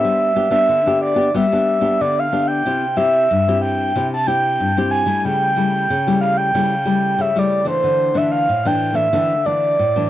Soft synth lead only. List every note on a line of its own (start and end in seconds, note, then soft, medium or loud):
0.00 0.49 E5 loud
0.52 0.98 E5 medium
1.01 1.32 D5 medium
1.37 2.03 E5 medium
2.01 2.21 D5 loud
2.19 2.49 F5 medium
2.47 2.96 G5 loud
2.97 3.58 E5 medium
3.62 4.07 G5 medium
4.14 4.28 A5 medium
4.27 4.90 G5 loud
4.91 5.22 G#5 loud
5.25 6.18 G5 loud
6.21 6.39 F5 medium
6.37 7.22 G5 loud
7.21 7.40 E5 loud
7.39 7.66 D5 medium
7.67 8.19 C5 loud
8.17 8.31 E5 medium
8.32 8.68 F5 medium
8.67 8.97 G5 medium
8.95 9.47 E5 loud
9.46 10.09 D5 loud